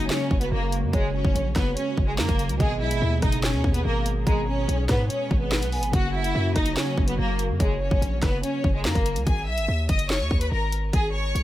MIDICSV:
0, 0, Header, 1, 7, 480
1, 0, Start_track
1, 0, Tempo, 416667
1, 1075, Time_signature, 4, 2, 24, 8
1, 13169, End_track
2, 0, Start_track
2, 0, Title_t, "Soft synth lead"
2, 0, Program_c, 0, 80
2, 1074, Note_on_c, 0, 73, 107
2, 1526, Note_off_c, 0, 73, 0
2, 2994, Note_on_c, 0, 75, 110
2, 3446, Note_off_c, 0, 75, 0
2, 4916, Note_on_c, 0, 82, 103
2, 5367, Note_off_c, 0, 82, 0
2, 6595, Note_on_c, 0, 80, 79
2, 6823, Note_off_c, 0, 80, 0
2, 6832, Note_on_c, 0, 78, 105
2, 7285, Note_off_c, 0, 78, 0
2, 8753, Note_on_c, 0, 73, 106
2, 9206, Note_off_c, 0, 73, 0
2, 13169, End_track
3, 0, Start_track
3, 0, Title_t, "Violin section"
3, 0, Program_c, 1, 48
3, 118, Note_on_c, 1, 61, 93
3, 126, Note_on_c, 1, 73, 75
3, 455, Note_off_c, 1, 61, 0
3, 460, Note_off_c, 1, 73, 0
3, 474, Note_on_c, 1, 59, 85
3, 484, Note_on_c, 1, 71, 60
3, 588, Note_off_c, 1, 59, 0
3, 593, Note_off_c, 1, 71, 0
3, 597, Note_on_c, 1, 58, 91
3, 606, Note_on_c, 1, 70, 73
3, 823, Note_off_c, 1, 58, 0
3, 828, Note_off_c, 1, 70, 0
3, 1071, Note_on_c, 1, 56, 86
3, 1080, Note_on_c, 1, 68, 61
3, 1300, Note_off_c, 1, 56, 0
3, 1305, Note_off_c, 1, 68, 0
3, 1318, Note_on_c, 1, 61, 83
3, 1327, Note_on_c, 1, 73, 59
3, 1768, Note_off_c, 1, 61, 0
3, 1773, Note_off_c, 1, 73, 0
3, 1793, Note_on_c, 1, 59, 86
3, 1803, Note_on_c, 1, 71, 71
3, 2021, Note_off_c, 1, 59, 0
3, 2026, Note_off_c, 1, 71, 0
3, 2031, Note_on_c, 1, 61, 90
3, 2040, Note_on_c, 1, 73, 70
3, 2371, Note_off_c, 1, 61, 0
3, 2376, Note_off_c, 1, 73, 0
3, 2393, Note_on_c, 1, 56, 78
3, 2402, Note_on_c, 1, 68, 61
3, 2507, Note_off_c, 1, 56, 0
3, 2513, Note_off_c, 1, 68, 0
3, 2515, Note_on_c, 1, 58, 86
3, 2524, Note_on_c, 1, 70, 63
3, 2966, Note_off_c, 1, 58, 0
3, 2971, Note_off_c, 1, 70, 0
3, 2987, Note_on_c, 1, 68, 88
3, 2996, Note_on_c, 1, 56, 66
3, 3218, Note_off_c, 1, 68, 0
3, 3223, Note_off_c, 1, 56, 0
3, 3229, Note_on_c, 1, 64, 87
3, 3238, Note_on_c, 1, 76, 66
3, 3683, Note_off_c, 1, 64, 0
3, 3688, Note_off_c, 1, 76, 0
3, 3714, Note_on_c, 1, 63, 77
3, 3724, Note_on_c, 1, 75, 63
3, 3942, Note_off_c, 1, 63, 0
3, 3947, Note_off_c, 1, 75, 0
3, 3955, Note_on_c, 1, 61, 88
3, 3964, Note_on_c, 1, 73, 73
3, 4294, Note_off_c, 1, 61, 0
3, 4299, Note_off_c, 1, 73, 0
3, 4311, Note_on_c, 1, 59, 82
3, 4320, Note_on_c, 1, 71, 62
3, 4426, Note_off_c, 1, 59, 0
3, 4431, Note_off_c, 1, 71, 0
3, 4434, Note_on_c, 1, 58, 89
3, 4444, Note_on_c, 1, 70, 69
3, 4662, Note_off_c, 1, 58, 0
3, 4667, Note_off_c, 1, 70, 0
3, 4916, Note_on_c, 1, 56, 91
3, 4926, Note_on_c, 1, 68, 72
3, 5143, Note_off_c, 1, 56, 0
3, 5148, Note_off_c, 1, 68, 0
3, 5151, Note_on_c, 1, 61, 95
3, 5160, Note_on_c, 1, 73, 69
3, 5604, Note_off_c, 1, 61, 0
3, 5609, Note_off_c, 1, 73, 0
3, 5632, Note_on_c, 1, 59, 86
3, 5642, Note_on_c, 1, 71, 67
3, 5861, Note_off_c, 1, 59, 0
3, 5866, Note_off_c, 1, 71, 0
3, 5869, Note_on_c, 1, 61, 87
3, 5877, Note_on_c, 1, 73, 65
3, 6210, Note_off_c, 1, 61, 0
3, 6215, Note_off_c, 1, 73, 0
3, 6234, Note_on_c, 1, 59, 82
3, 6243, Note_on_c, 1, 71, 63
3, 6798, Note_off_c, 1, 59, 0
3, 6803, Note_off_c, 1, 71, 0
3, 6836, Note_on_c, 1, 66, 86
3, 6845, Note_on_c, 1, 78, 63
3, 7063, Note_off_c, 1, 66, 0
3, 7067, Note_off_c, 1, 78, 0
3, 7082, Note_on_c, 1, 64, 92
3, 7092, Note_on_c, 1, 76, 74
3, 7530, Note_off_c, 1, 64, 0
3, 7535, Note_off_c, 1, 76, 0
3, 7552, Note_on_c, 1, 63, 96
3, 7561, Note_on_c, 1, 75, 69
3, 7780, Note_off_c, 1, 63, 0
3, 7785, Note_off_c, 1, 75, 0
3, 7798, Note_on_c, 1, 61, 97
3, 7807, Note_on_c, 1, 73, 74
3, 8135, Note_off_c, 1, 61, 0
3, 8140, Note_off_c, 1, 73, 0
3, 8154, Note_on_c, 1, 59, 82
3, 8164, Note_on_c, 1, 71, 58
3, 8268, Note_off_c, 1, 59, 0
3, 8273, Note_off_c, 1, 71, 0
3, 8278, Note_on_c, 1, 58, 93
3, 8287, Note_on_c, 1, 70, 75
3, 8504, Note_off_c, 1, 58, 0
3, 8508, Note_off_c, 1, 70, 0
3, 8752, Note_on_c, 1, 56, 83
3, 8761, Note_on_c, 1, 68, 63
3, 8980, Note_off_c, 1, 56, 0
3, 8985, Note_off_c, 1, 68, 0
3, 8998, Note_on_c, 1, 61, 85
3, 9008, Note_on_c, 1, 73, 59
3, 9448, Note_off_c, 1, 61, 0
3, 9453, Note_off_c, 1, 73, 0
3, 9475, Note_on_c, 1, 59, 84
3, 9484, Note_on_c, 1, 71, 69
3, 9702, Note_off_c, 1, 59, 0
3, 9707, Note_off_c, 1, 71, 0
3, 9710, Note_on_c, 1, 61, 87
3, 9720, Note_on_c, 1, 73, 69
3, 10051, Note_off_c, 1, 61, 0
3, 10056, Note_off_c, 1, 73, 0
3, 10073, Note_on_c, 1, 56, 79
3, 10082, Note_on_c, 1, 68, 61
3, 10188, Note_off_c, 1, 56, 0
3, 10192, Note_off_c, 1, 68, 0
3, 10194, Note_on_c, 1, 58, 89
3, 10204, Note_on_c, 1, 70, 64
3, 10646, Note_off_c, 1, 58, 0
3, 10651, Note_off_c, 1, 70, 0
3, 10666, Note_on_c, 1, 80, 82
3, 10675, Note_on_c, 1, 68, 64
3, 10897, Note_off_c, 1, 80, 0
3, 10902, Note_off_c, 1, 68, 0
3, 10909, Note_on_c, 1, 76, 84
3, 10918, Note_on_c, 1, 88, 63
3, 11363, Note_off_c, 1, 76, 0
3, 11368, Note_off_c, 1, 88, 0
3, 11394, Note_on_c, 1, 75, 78
3, 11403, Note_on_c, 1, 87, 61
3, 11621, Note_off_c, 1, 75, 0
3, 11626, Note_off_c, 1, 87, 0
3, 11633, Note_on_c, 1, 73, 88
3, 11643, Note_on_c, 1, 85, 70
3, 11973, Note_off_c, 1, 73, 0
3, 11978, Note_off_c, 1, 85, 0
3, 11989, Note_on_c, 1, 71, 80
3, 11998, Note_on_c, 1, 83, 63
3, 12106, Note_off_c, 1, 71, 0
3, 12110, Note_off_c, 1, 83, 0
3, 12114, Note_on_c, 1, 70, 85
3, 12123, Note_on_c, 1, 82, 69
3, 12341, Note_off_c, 1, 70, 0
3, 12346, Note_off_c, 1, 82, 0
3, 12597, Note_on_c, 1, 68, 96
3, 12606, Note_on_c, 1, 80, 66
3, 12823, Note_off_c, 1, 68, 0
3, 12828, Note_off_c, 1, 80, 0
3, 12830, Note_on_c, 1, 73, 91
3, 12839, Note_on_c, 1, 85, 67
3, 13169, Note_off_c, 1, 73, 0
3, 13169, Note_off_c, 1, 85, 0
3, 13169, End_track
4, 0, Start_track
4, 0, Title_t, "Tine electric piano"
4, 0, Program_c, 2, 4
4, 0, Control_c, 2, 64, 127
4, 0, Note_on_c, 2, 49, 72
4, 0, Note_on_c, 2, 58, 67
4, 0, Note_on_c, 2, 66, 81
4, 2939, Note_off_c, 2, 49, 0
4, 2950, Note_off_c, 2, 58, 0
4, 2961, Note_off_c, 2, 66, 0
4, 2972, Note_on_c, 2, 47, 64
4, 2994, Note_on_c, 2, 59, 61
4, 3009, Control_c, 2, 64, 0
4, 3016, Note_on_c, 2, 68, 75
4, 3185, Control_c, 2, 64, 127
4, 6778, Note_off_c, 2, 47, 0
4, 6789, Note_off_c, 2, 59, 0
4, 6800, Note_off_c, 2, 68, 0
4, 6815, Note_on_c, 2, 49, 69
4, 6837, Note_on_c, 2, 58, 65
4, 6850, Control_c, 2, 64, 0
4, 6859, Note_on_c, 2, 66, 84
4, 7020, Control_c, 2, 64, 127
4, 10619, Note_off_c, 2, 49, 0
4, 10630, Note_off_c, 2, 58, 0
4, 10641, Note_off_c, 2, 66, 0
4, 10692, Control_c, 2, 64, 0
4, 13169, End_track
5, 0, Start_track
5, 0, Title_t, "Analog synth pad"
5, 0, Program_c, 3, 89
5, 0, Note_on_c, 3, 49, 78
5, 0, Note_on_c, 3, 54, 74
5, 0, Note_on_c, 3, 56, 71
5, 0, Note_on_c, 3, 66, 84
5, 2958, Note_off_c, 3, 49, 0
5, 2958, Note_off_c, 3, 54, 0
5, 2958, Note_off_c, 3, 66, 0
5, 2995, Note_on_c, 3, 59, 68
5, 2996, Note_on_c, 3, 47, 78
5, 2996, Note_on_c, 3, 68, 87
5, 6789, Note_off_c, 3, 56, 0
5, 6797, Note_off_c, 3, 47, 0
5, 6797, Note_off_c, 3, 59, 0
5, 6797, Note_off_c, 3, 68, 0
5, 6836, Note_on_c, 3, 54, 72
5, 6836, Note_on_c, 3, 58, 72
5, 6837, Note_on_c, 3, 49, 75
5, 6837, Note_on_c, 3, 66, 86
5, 10637, Note_off_c, 3, 54, 0
5, 10637, Note_off_c, 3, 58, 0
5, 10638, Note_off_c, 3, 49, 0
5, 10638, Note_off_c, 3, 66, 0
5, 13169, End_track
6, 0, Start_track
6, 0, Title_t, "808-style bass"
6, 0, Program_c, 4, 38
6, 355, Note_on_c, 4, 30, 107
6, 586, Note_off_c, 4, 30, 0
6, 596, Note_on_c, 4, 30, 110
6, 955, Note_on_c, 4, 42, 104
6, 973, Note_off_c, 4, 30, 0
6, 1069, Note_off_c, 4, 42, 0
6, 1076, Note_on_c, 4, 30, 114
6, 1421, Note_off_c, 4, 30, 0
6, 1435, Note_on_c, 4, 30, 101
6, 1550, Note_off_c, 4, 30, 0
6, 1556, Note_on_c, 4, 34, 107
6, 1786, Note_off_c, 4, 34, 0
6, 1795, Note_on_c, 4, 30, 106
6, 2025, Note_off_c, 4, 30, 0
6, 2275, Note_on_c, 4, 30, 111
6, 2516, Note_on_c, 4, 42, 101
6, 2533, Note_off_c, 4, 30, 0
6, 2629, Note_off_c, 4, 42, 0
6, 2634, Note_on_c, 4, 30, 111
6, 2876, Note_on_c, 4, 37, 101
6, 2893, Note_off_c, 4, 30, 0
6, 2989, Note_off_c, 4, 37, 0
6, 2995, Note_on_c, 4, 32, 108
6, 3236, Note_on_c, 4, 35, 95
6, 3253, Note_off_c, 4, 32, 0
6, 3356, Note_on_c, 4, 32, 98
6, 3373, Note_off_c, 4, 35, 0
6, 3469, Note_off_c, 4, 32, 0
6, 3476, Note_on_c, 4, 39, 109
6, 3706, Note_off_c, 4, 39, 0
6, 3715, Note_on_c, 4, 30, 105
6, 4075, Note_on_c, 4, 39, 101
6, 4093, Note_off_c, 4, 30, 0
6, 4189, Note_off_c, 4, 39, 0
6, 4195, Note_on_c, 4, 39, 107
6, 4426, Note_off_c, 4, 39, 0
6, 4435, Note_on_c, 4, 32, 110
6, 4896, Note_off_c, 4, 32, 0
6, 4915, Note_on_c, 4, 32, 110
6, 5376, Note_off_c, 4, 32, 0
6, 5395, Note_on_c, 4, 35, 108
6, 5626, Note_off_c, 4, 35, 0
6, 5635, Note_on_c, 4, 44, 106
6, 5866, Note_off_c, 4, 44, 0
6, 6115, Note_on_c, 4, 32, 113
6, 6475, Note_on_c, 4, 35, 102
6, 6493, Note_off_c, 4, 32, 0
6, 6656, Note_on_c, 4, 32, 100
6, 6673, Note_off_c, 4, 35, 0
6, 6827, Note_off_c, 4, 32, 0
6, 6836, Note_on_c, 4, 30, 114
6, 7296, Note_off_c, 4, 30, 0
6, 7316, Note_on_c, 4, 42, 103
6, 7546, Note_off_c, 4, 42, 0
6, 7555, Note_on_c, 4, 30, 104
6, 7786, Note_off_c, 4, 30, 0
6, 8035, Note_on_c, 4, 30, 105
6, 8266, Note_off_c, 4, 30, 0
6, 8276, Note_on_c, 4, 30, 108
6, 8635, Note_on_c, 4, 42, 104
6, 8653, Note_off_c, 4, 30, 0
6, 8749, Note_off_c, 4, 42, 0
6, 8755, Note_on_c, 4, 30, 115
6, 9101, Note_off_c, 4, 30, 0
6, 9114, Note_on_c, 4, 30, 105
6, 9230, Note_off_c, 4, 30, 0
6, 9236, Note_on_c, 4, 34, 109
6, 9466, Note_off_c, 4, 34, 0
6, 9475, Note_on_c, 4, 30, 105
6, 9705, Note_off_c, 4, 30, 0
6, 9955, Note_on_c, 4, 30, 113
6, 10195, Note_on_c, 4, 42, 101
6, 10212, Note_off_c, 4, 30, 0
6, 10309, Note_off_c, 4, 42, 0
6, 10315, Note_on_c, 4, 30, 109
6, 10556, Note_on_c, 4, 37, 105
6, 10573, Note_off_c, 4, 30, 0
6, 10670, Note_off_c, 4, 37, 0
6, 10675, Note_on_c, 4, 32, 107
6, 10916, Note_on_c, 4, 35, 94
6, 10933, Note_off_c, 4, 32, 0
6, 11035, Note_on_c, 4, 32, 96
6, 11052, Note_off_c, 4, 35, 0
6, 11149, Note_off_c, 4, 32, 0
6, 11155, Note_on_c, 4, 39, 108
6, 11386, Note_off_c, 4, 39, 0
6, 11395, Note_on_c, 4, 30, 102
6, 11755, Note_on_c, 4, 39, 98
6, 11772, Note_off_c, 4, 30, 0
6, 11869, Note_off_c, 4, 39, 0
6, 11875, Note_on_c, 4, 39, 105
6, 12105, Note_off_c, 4, 39, 0
6, 12115, Note_on_c, 4, 32, 109
6, 12576, Note_off_c, 4, 32, 0
6, 12595, Note_on_c, 4, 32, 112
6, 13056, Note_off_c, 4, 32, 0
6, 13075, Note_on_c, 4, 35, 105
6, 13169, Note_off_c, 4, 35, 0
6, 13169, End_track
7, 0, Start_track
7, 0, Title_t, "Drums"
7, 116, Note_on_c, 9, 38, 121
7, 129, Note_on_c, 9, 39, 97
7, 231, Note_off_c, 9, 38, 0
7, 244, Note_off_c, 9, 39, 0
7, 355, Note_on_c, 9, 36, 99
7, 470, Note_off_c, 9, 36, 0
7, 473, Note_on_c, 9, 42, 74
7, 588, Note_off_c, 9, 42, 0
7, 835, Note_on_c, 9, 42, 85
7, 950, Note_off_c, 9, 42, 0
7, 1075, Note_on_c, 9, 36, 114
7, 1076, Note_on_c, 9, 42, 75
7, 1191, Note_off_c, 9, 36, 0
7, 1191, Note_off_c, 9, 42, 0
7, 1435, Note_on_c, 9, 36, 112
7, 1550, Note_off_c, 9, 36, 0
7, 1562, Note_on_c, 9, 42, 78
7, 1677, Note_off_c, 9, 42, 0
7, 1793, Note_on_c, 9, 42, 77
7, 1795, Note_on_c, 9, 36, 94
7, 1795, Note_on_c, 9, 37, 93
7, 1795, Note_on_c, 9, 38, 66
7, 1908, Note_off_c, 9, 42, 0
7, 1910, Note_off_c, 9, 36, 0
7, 1910, Note_off_c, 9, 37, 0
7, 1910, Note_off_c, 9, 38, 0
7, 2036, Note_on_c, 9, 42, 73
7, 2151, Note_off_c, 9, 42, 0
7, 2275, Note_on_c, 9, 36, 96
7, 2390, Note_off_c, 9, 36, 0
7, 2515, Note_on_c, 9, 38, 119
7, 2528, Note_on_c, 9, 39, 99
7, 2630, Note_off_c, 9, 38, 0
7, 2635, Note_on_c, 9, 36, 99
7, 2635, Note_on_c, 9, 42, 48
7, 2643, Note_off_c, 9, 39, 0
7, 2750, Note_off_c, 9, 36, 0
7, 2750, Note_off_c, 9, 42, 0
7, 2755, Note_on_c, 9, 42, 81
7, 2870, Note_off_c, 9, 42, 0
7, 2873, Note_on_c, 9, 42, 85
7, 2989, Note_off_c, 9, 42, 0
7, 2995, Note_on_c, 9, 36, 119
7, 2996, Note_on_c, 9, 42, 76
7, 3111, Note_off_c, 9, 36, 0
7, 3111, Note_off_c, 9, 42, 0
7, 3352, Note_on_c, 9, 42, 80
7, 3467, Note_off_c, 9, 42, 0
7, 3713, Note_on_c, 9, 42, 75
7, 3715, Note_on_c, 9, 36, 98
7, 3715, Note_on_c, 9, 37, 90
7, 3828, Note_off_c, 9, 42, 0
7, 3829, Note_on_c, 9, 42, 82
7, 3830, Note_off_c, 9, 36, 0
7, 3830, Note_off_c, 9, 37, 0
7, 3944, Note_off_c, 9, 42, 0
7, 3956, Note_on_c, 9, 38, 126
7, 3969, Note_on_c, 9, 39, 99
7, 4071, Note_off_c, 9, 38, 0
7, 4084, Note_off_c, 9, 39, 0
7, 4195, Note_on_c, 9, 36, 98
7, 4310, Note_off_c, 9, 36, 0
7, 4312, Note_on_c, 9, 42, 74
7, 4427, Note_off_c, 9, 42, 0
7, 4675, Note_on_c, 9, 42, 85
7, 4790, Note_off_c, 9, 42, 0
7, 4915, Note_on_c, 9, 36, 115
7, 4916, Note_on_c, 9, 42, 76
7, 5030, Note_off_c, 9, 36, 0
7, 5031, Note_off_c, 9, 42, 0
7, 5402, Note_on_c, 9, 42, 81
7, 5517, Note_off_c, 9, 42, 0
7, 5634, Note_on_c, 9, 42, 75
7, 5635, Note_on_c, 9, 36, 100
7, 5635, Note_on_c, 9, 37, 93
7, 5635, Note_on_c, 9, 38, 67
7, 5749, Note_off_c, 9, 42, 0
7, 5750, Note_off_c, 9, 36, 0
7, 5751, Note_off_c, 9, 37, 0
7, 5751, Note_off_c, 9, 38, 0
7, 5876, Note_on_c, 9, 42, 74
7, 5991, Note_off_c, 9, 42, 0
7, 6115, Note_on_c, 9, 36, 97
7, 6230, Note_off_c, 9, 36, 0
7, 6356, Note_on_c, 9, 38, 121
7, 6369, Note_on_c, 9, 39, 97
7, 6471, Note_off_c, 9, 38, 0
7, 6480, Note_on_c, 9, 42, 75
7, 6484, Note_off_c, 9, 39, 0
7, 6595, Note_off_c, 9, 42, 0
7, 6595, Note_on_c, 9, 46, 62
7, 6710, Note_off_c, 9, 46, 0
7, 6713, Note_on_c, 9, 42, 90
7, 6828, Note_off_c, 9, 42, 0
7, 6836, Note_on_c, 9, 36, 122
7, 6836, Note_on_c, 9, 42, 77
7, 6951, Note_off_c, 9, 36, 0
7, 6951, Note_off_c, 9, 42, 0
7, 7192, Note_on_c, 9, 42, 77
7, 7307, Note_off_c, 9, 42, 0
7, 7553, Note_on_c, 9, 42, 78
7, 7555, Note_on_c, 9, 36, 94
7, 7555, Note_on_c, 9, 37, 94
7, 7668, Note_off_c, 9, 42, 0
7, 7668, Note_on_c, 9, 42, 83
7, 7670, Note_off_c, 9, 36, 0
7, 7670, Note_off_c, 9, 37, 0
7, 7783, Note_off_c, 9, 42, 0
7, 7795, Note_on_c, 9, 38, 119
7, 7808, Note_on_c, 9, 39, 97
7, 7910, Note_off_c, 9, 38, 0
7, 7923, Note_off_c, 9, 39, 0
7, 8035, Note_on_c, 9, 36, 102
7, 8150, Note_off_c, 9, 36, 0
7, 8152, Note_on_c, 9, 42, 75
7, 8267, Note_off_c, 9, 42, 0
7, 8515, Note_on_c, 9, 42, 85
7, 8630, Note_off_c, 9, 42, 0
7, 8755, Note_on_c, 9, 36, 117
7, 8756, Note_on_c, 9, 42, 73
7, 8871, Note_off_c, 9, 36, 0
7, 8871, Note_off_c, 9, 42, 0
7, 9115, Note_on_c, 9, 36, 114
7, 9230, Note_off_c, 9, 36, 0
7, 9242, Note_on_c, 9, 42, 81
7, 9358, Note_off_c, 9, 42, 0
7, 9474, Note_on_c, 9, 42, 76
7, 9475, Note_on_c, 9, 36, 96
7, 9475, Note_on_c, 9, 37, 97
7, 9475, Note_on_c, 9, 38, 69
7, 9589, Note_off_c, 9, 42, 0
7, 9590, Note_off_c, 9, 36, 0
7, 9591, Note_off_c, 9, 37, 0
7, 9591, Note_off_c, 9, 38, 0
7, 9716, Note_on_c, 9, 42, 73
7, 9832, Note_off_c, 9, 42, 0
7, 9955, Note_on_c, 9, 36, 101
7, 10070, Note_off_c, 9, 36, 0
7, 10195, Note_on_c, 9, 38, 120
7, 10208, Note_on_c, 9, 39, 101
7, 10310, Note_off_c, 9, 38, 0
7, 10314, Note_on_c, 9, 36, 99
7, 10315, Note_on_c, 9, 42, 49
7, 10323, Note_off_c, 9, 39, 0
7, 10430, Note_off_c, 9, 36, 0
7, 10430, Note_off_c, 9, 42, 0
7, 10434, Note_on_c, 9, 42, 77
7, 10550, Note_off_c, 9, 42, 0
7, 10553, Note_on_c, 9, 42, 86
7, 10668, Note_off_c, 9, 42, 0
7, 10675, Note_on_c, 9, 36, 118
7, 10675, Note_on_c, 9, 42, 71
7, 10790, Note_off_c, 9, 36, 0
7, 10790, Note_off_c, 9, 42, 0
7, 11032, Note_on_c, 9, 42, 76
7, 11147, Note_off_c, 9, 42, 0
7, 11393, Note_on_c, 9, 42, 73
7, 11395, Note_on_c, 9, 36, 95
7, 11508, Note_off_c, 9, 42, 0
7, 11508, Note_on_c, 9, 42, 84
7, 11510, Note_off_c, 9, 36, 0
7, 11623, Note_off_c, 9, 42, 0
7, 11635, Note_on_c, 9, 38, 118
7, 11648, Note_on_c, 9, 39, 93
7, 11750, Note_off_c, 9, 38, 0
7, 11763, Note_off_c, 9, 39, 0
7, 11875, Note_on_c, 9, 36, 95
7, 11990, Note_off_c, 9, 36, 0
7, 11992, Note_on_c, 9, 42, 75
7, 12108, Note_off_c, 9, 42, 0
7, 12354, Note_on_c, 9, 42, 86
7, 12470, Note_off_c, 9, 42, 0
7, 12595, Note_on_c, 9, 36, 115
7, 12595, Note_on_c, 9, 42, 73
7, 12710, Note_off_c, 9, 36, 0
7, 12710, Note_off_c, 9, 42, 0
7, 13082, Note_on_c, 9, 42, 78
7, 13169, Note_off_c, 9, 42, 0
7, 13169, End_track
0, 0, End_of_file